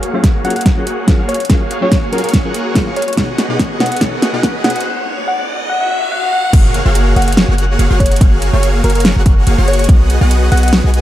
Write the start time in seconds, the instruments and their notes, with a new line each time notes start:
Already playing: supersaw synth A#3 F#4 G#4 C#5 F5, riser
0.03 closed hi-hat
0.13 tine electric piano F#3 C#4 F4 G#4 C#5, supersaw synth A#3 F#4 G#4 C#5 F5
0.24 kick, snare, closed hi-hat
0.44 tine electric piano F#3 C#4 F4 G#4 A#4, supersaw synth A#3 F#4 G#4 C#5 F5, soft synth lead F#5, closed hi-hat
0.50 closed hi-hat
0.56 soft synth lead F#5, closed hi-hat
0.61 closed hi-hat
0.66 kick, snare, closed hi-hat
0.76 tine electric piano F#3 C#4 F4 G#4 A#4, supersaw synth A#3 F#4 G#4 C#5 F#5
0.87 closed hi-hat
1.07 tine electric piano F#3 C#4 F4 G#4 A#4, kick, snare, closed hi-hat
1.19 supersaw synth A#3 F#4 G#4 C#5 F5
1.29 soft synth lead C#5, closed hi-hat
1.34 closed hi-hat
1.40 closed hi-hat
1.45 closed hi-hat
1.49 tine electric piano F#3 C#4 F4 G#4 A#4, supersaw synth A#3 F#4 G#4 C#5 F5, kick, snare, closed hi-hat
1.71 closed hi-hat
1.81 tine electric piano F#3 C#4 F4 G#4 C#5, supersaw synth A#3 F#4 G#4 C#5 F5, soft synth lead C#5
1.92 kick, snare, closed hi-hat
2.12 tine electric piano F#3 C#4 F4 G#4 A#4, supersaw synth A#3 F#4 G#4 C#5 F5, soft synth lead A#4, closed hi-hat
2.18 closed hi-hat
2.24 soft synth lead A#4, closed hi-hat
2.29 closed hi-hat
2.34 kick, snare, closed hi-hat
2.44 tine electric piano F#3 C#4 F4 G#4 A#4, supersaw synth A#3 F#4 G#4 C#5 F#5
2.54 closed hi-hat
2.74 tine electric piano F#3 C#4 F4 G#4 A#4, kick, snare, closed hi-hat
2.87 supersaw synth A#3 F#4 G#4 C#5 F5
2.96 soft synth lead C#5, closed hi-hat
3.02 closed hi-hat
3.08 soft synth lead C#5, closed hi-hat
3.13 tine electric piano B2 B3, closed hi-hat
3.17 supersaw synth B3 F#4 G#4 D#5 F#5, tine electric piano D#4 G#4 C#5, kick, snare, closed hi-hat
3.38 snare, closed hi-hat
3.48 tine electric piano B2 B3 D#4 G#4 D#5, supersaw synth B3 F#4 G#4 D#5 F#5
3.59 kick, snare, closed hi-hat
3.79 tine electric piano B2 B3 D#4 G#4 C#5, supersaw synth B3 F#4 G#4 D#5 F#5, soft synth lead F#5, snare, closed hi-hat
3.86 closed hi-hat
3.92 soft synth lead F#5, closed hi-hat
3.97 tine electric piano B2, closed hi-hat
4.01 tine electric piano B3 D#4 G#4 C#5, supersaw synth B3 F#4 G#4 D#5 F#5, kick, snare, closed hi-hat
4.22 snare, closed hi-hat
4.33 tine electric piano B2 B3 D#4 G#4 D#5, supersaw synth B3 F#4 G#4 D#5 F#5
4.43 kick, snare, closed hi-hat
4.63 tine electric piano B2 B3 D#4 G#4 C#5, supersaw synth B3 F#4 G#4 D#5 F#5, soft synth lead F#5, snare, closed hi-hat
4.70 closed hi-hat
4.76 soft synth lead F#5, closed hi-hat
4.80 closed hi-hat
4.86 soft synth lead F#5
4.97 soft synth lead F#5
5.28 soft synth lead F#5
5.39 soft synth lead F#5
5.69 soft synth lead F#5, swell
5.81 soft synth lead F#5
5.91 soft synth lead F#5
6.02 soft synth lead F#5
6.12 soft synth lead F#5
6.23 soft synth lead F#5
6.33 soft synth lead F#5
6.44 soft synth lead F#5
6.53 808-style bass F#1, supersaw synth A#3 F#4 G#4 C#5 F5, kick, closed hi-hat, crash, impact
6.74 closed hi-hat
6.86 808-style bass F#1, supersaw synth A#3 F#4 G#4 C#5 F5
6.95 closed hi-hat
7.16 808-style bass F#1, supersaw synth A#3 F#4 G#4 C#5 F5, soft synth lead F#5, closed hi-hat
7.22 closed hi-hat
7.28 soft synth lead F#5, closed hi-hat
7.32 closed hi-hat
7.37 snare, closed hi-hat
7.49 808-style bass F#1, supersaw synth A#3 F#4 G#4 C#5 F#5
7.58 closed hi-hat
7.79 808-style bass F#1, supersaw synth A#3 F#4 G#4 C#5 F5, closed hi-hat
7.90 808-style bass F#1, supersaw synth A#3 F#4 G#4 C#5 F#5
8.00 soft synth lead C#5, kick, closed hi-hat
8.06 closed hi-hat
8.12 closed hi-hat
8.16 closed hi-hat
8.21 808-style bass F#1, supersaw synth A#3 F#4 G#4 C#5 F5, kick, closed hi-hat
8.42 closed hi-hat
8.53 808-style bass F#1, supersaw synth A#3 F#4 G#4 C#5 F5, soft synth lead C#5
8.63 closed hi-hat
8.84 808-style bass F#1, supersaw synth A#3 F#4 G#4 C#5 F5, soft synth lead A#4, closed hi-hat
8.90 closed hi-hat
8.95 soft synth lead A#4, closed hi-hat
9.00 closed hi-hat
9.05 snare, closed hi-hat
9.16 808-style bass F#1, supersaw synth A#3 F#4 G#4 C#5 F#5
9.26 kick, closed hi-hat
9.47 808-style bass F#1, supersaw synth A#3 F#4 G#4 C#5 F5, closed hi-hat
9.58 808-style bass F#1, supersaw synth A#3 F#4 G#4 C#5 F#5
9.68 soft synth lead C#5, closed hi-hat
9.73 closed hi-hat
9.79 soft synth lead C#5, closed hi-hat
9.84 closed hi-hat
9.89 808-style bass B1, supersaw synth B3 F#4 G#4 D#5 F#5, kick, closed hi-hat
10.10 closed hi-hat
10.21 808-style bass B1, supersaw synth B3 F#4 G#4 D#5 F#5
10.31 closed hi-hat
10.52 808-style bass B1, supersaw synth B3 F#4 G#4 D#5 F#5, soft synth lead F#5, closed hi-hat
10.57 closed hi-hat
10.63 soft synth lead F#5, closed hi-hat
10.68 closed hi-hat
10.73 snare, closed hi-hat
10.84 808-style bass B1, supersaw synth B3 F#4 G#4 D#5 G#5
10.94 closed hi-hat